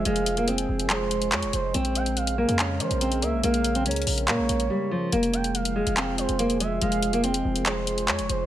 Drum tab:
HH |x-x-x-x-x-x---x-x---x-x-x-x-x---|x-x-x-x-x-x---x-x---x-x-x-x-x---|x-x-x-x-xxxxo-x-x---x-x---------|x-x-x-x-x-x---x-x---x-x-x-x-x---|
CP |----------------x-------x-------|----------------x---------------|----------------x---------------|----------------x---------------|

HH |x-x-x-x-x-x---x-x---x-x-x-x-x---|
CP |----------------x-------x-------|